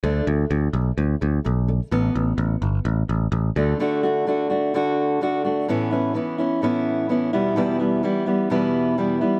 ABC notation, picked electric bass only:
X:1
M:4/4
L:1/8
Q:1/4=128
K:D
V:1 name="Picked electric bass" clef=bass
D,, D,, D,, B,,, D,, D,, B,,,2 | A,,, A,,, A,,, G,,, A,,, A,,, A,,, D,, | z8 | z8 |
z8 |]